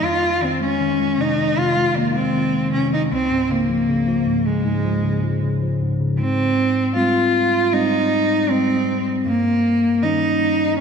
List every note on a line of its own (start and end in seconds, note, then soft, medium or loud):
0.03 3.07 F2 soft
0.03 0.45 F4 medium
0.42 0.79 D#3 soft
0.42 0.62 C4 medium
0.60 0.98 G#3 soft
0.60 1.22 C#4 medium
0.80 1.37 D#3 medium
0.99 1.75 G#3 soft
1.18 1.56 C3 soft
1.18 1.60 D#4 medium
1.38 1.94 D#3 soft
1.57 2.71 C3 medium
1.57 1.99 F4 loud
1.76 2.14 G#3 soft
1.95 2.33 D#3 soft
1.95 2.18 A#3 medium
2.15 2.52 G#3 medium
2.15 2.73 C4 medium
2.34 2.90 D#3 soft
2.53 3.09 G#3 soft
2.72 3.10 C3 soft
2.72 2.91 C#4 medium
2.91 3.10 D#3 medium
2.91 3.02 D#4 medium
3.11 6.15 C#2 soft
3.11 3.52 C4 medium
3.31 4.26 G#2 soft
3.50 3.88 C#3 medium
3.50 4.49 A#3 medium
3.69 4.06 F3 medium
3.89 4.45 C#3 medium
4.08 4.84 F3 medium
4.27 4.64 G#2 soft
4.46 5.02 C#3 soft
4.46 5.43 G#3 medium
4.65 5.80 G#2 medium
4.85 5.22 F3 soft
5.04 5.42 C#3 medium
5.24 5.61 F3 medium
5.43 5.99 C#3 soft
5.62 6.18 F3 soft
5.81 6.18 G#2 soft
6.00 6.19 C#3 soft
6.19 9.23 G#2 medium
6.19 6.92 C4 medium
6.96 7.71 G3 soft
6.96 7.71 G#3 soft
6.96 7.71 C4 soft
6.96 7.75 F4 medium
7.73 8.47 G3 soft
7.73 8.47 G#3 soft
7.73 8.48 C4 medium
7.73 8.51 D#4 medium
8.49 9.24 G3 soft
8.49 9.24 G#3 soft
8.49 9.07 C4 medium
8.49 9.24 C4 soft
9.26 10.80 G2 medium
9.26 10.04 A#3 medium
10.03 10.78 D#3 soft
10.03 10.78 G3 soft
10.03 10.78 C#4 medium
10.03 10.79 D#4 medium